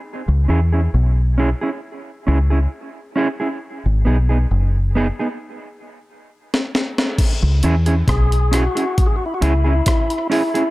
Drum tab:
CC |----------------|----------------|x---------------|
HH |----------------|----------------|x-xxxxxxx-x-xxox|
SD |----------------|-------------ooo|----r-r-----r---|
BD |----------------|----------------|o---o---o---o---|